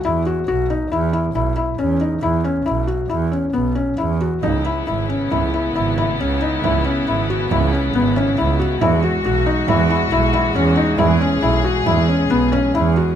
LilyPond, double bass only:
\new Staff \with { instrumentName = "Double bass" } { \clef bass \time 5/4 \key e \major \tempo 4 = 137 e,4 b,,4 e,4 b,,4 e,4 | e,4 b,,4 e,4 b,,4 e,4 | cis,4 gis,,4 cis,4 gis,,4 cis,4 | cis,4 gis,,4 cis,4 gis,,4 cis,4 |
e,4 b,,4 e,4 b,,4 e,4 | e,4 b,,4 e,4 b,,4 e,4 | }